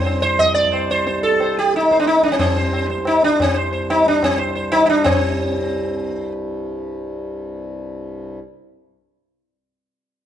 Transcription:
Already playing: C2 G2 C4
0.04 C5, tabla na
0.22 C5, tabla te
0.39 D#5, tabla na, tabla ge
0.54 D5, tabla te
0.64 tabla ge
0.72 C5, tabla na
0.90 C5, tabla te
1.07 C5, tabla te
1.15 tabla te
1.23 A4, tabla ke
1.32 tabla te
1.40 C5, tabla na
1.57 G4, tabla te
1.74 D#4, tabla te
1.83 tabla te
1.91 C5, tabla ke
1.99 D4, tabla te
2.07 D#4, tabla te
2.15 tabla te
2.23 D4, tabla ke
2.28 C4 D4, tabla te
2.39 C4, tabla na, tabla ge
2.56 C5, tabla ge
2.73 C5, tabla na
2.90 C5, tabla ke
2.98 tabla te
3.05 D#4, tabla na
3.23 D4, tabla te
3.40 C4, tabla na, tabla ge
3.56 C5
3.73 C5
3.90 D#4, tabla na
4.06 D4, tabla te
4.23 C4, tabla na, tabla ge
4.38 C5
4.55 C5
4.72 D#4, tabla na
4.86 D4 D#4, tabla te
5.04 C2 G2 C4, tabla na, tabla ge

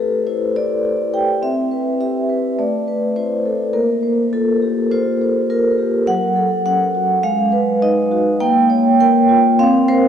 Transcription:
Already playing: A3 E4 G4 A4 B4
0.27 E4 C5
0.56 A4 D5
0.85 E4
1.14 G4 G5
1.42 C4 E5
1.71 B4
2.00 G4 E5
2.30 B4
2.59 A3 D5
2.88 B4
3.16 E4 C5
3.46 A4
3.73 A#3 A#4
4.03 C5
4.33 F4 A4
4.62 G4
4.92 F4 C5
5.21 C5
5.50 F4 A#4
5.78 G4
6.07 F#3 F#5
6.36 A4
6.66 C#4 F#5
6.95 F#4
7.23 G#3 F5
7.52 B4
7.82 D#4 D#5
8.11 F#4
8.40 A#3 G5
8.70 C#5
9.00 A#4 G5
9.29 F4
9.59 C4 F5
9.88 A#4 C5

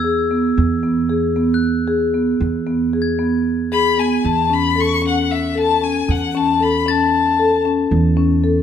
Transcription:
Already playing: E2 E6 G#6
0.04 G#4
0.31 B3
0.57 E2
0.83 B3
1.09 G#4
1.36 B3
1.54 F#6
1.88 G#4
2.14 B3
2.40 E2
2.67 B3
2.93 G#4
3.02 G#6
3.19 B3
3.72 G#4 B5
3.98 B3 G#5
4.24 E2 A5
4.50 C#4 B5
4.76 A4
4.80 C#6
5.02 C#4
5.07 F#5
5.31 E5
5.55 A4 A5
5.81 C#4 G#5
6.08 E2 F#5
6.35 C#4 A5
6.60 A4 B5
6.86 C#4 A5 A6
7.39 A4
7.65 C#4
7.91 E2
8.17 C#4
8.44 A4

